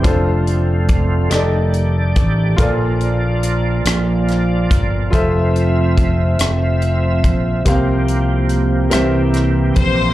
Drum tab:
HH |xxxxxx|xxxxxx|xxxxxx|xxxxxx|
SD |---r--|---rr-|---r--|---rr-|
BD |o-o--o|o----o|o-o--o|o----o|